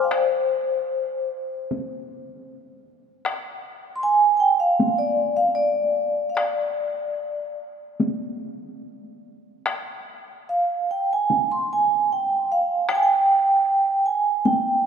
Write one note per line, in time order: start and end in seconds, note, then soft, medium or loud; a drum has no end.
0.00 0.18 F5 soft
0.00 0.15 G5 soft
0.00 0.11 G#5 soft
0.09 1.28 C5 medium
0.09 0.22 D5 soft
0.09 taiko rim soft
1.71 taiko high soft
3.25 taiko rim soft
3.96 4.02 C6 medium
4.03 4.34 G#5 medium
4.37 4.59 G5 medium
4.37 4.41 G#5 medium
4.60 4.97 F5 medium
4.80 taiko high soft
4.99 5.36 D5 medium
5.37 5.56 F5 medium
5.55 6.25 D5 medium
6.30 6.37 F5 soft
6.35 7.54 D5 medium
6.35 taiko rim soft
8.00 taiko high soft
9.66 taiko rim medium
10.49 10.87 F5 medium
10.91 11.09 G5 medium
11.13 11.49 G#5 medium
11.30 taiko high soft
11.52 11.70 C6 medium
11.73 12.09 G#5 medium
12.13 12.48 G5 medium
12.52 12.87 F5 medium
12.89 12.96 G5 medium
12.89 taiko rim medium
12.95 13.02 G#5 medium
13.03 14.03 G5 medium
14.06 14.42 G#5 medium
14.45 14.87 G5 medium
14.45 taiko high soft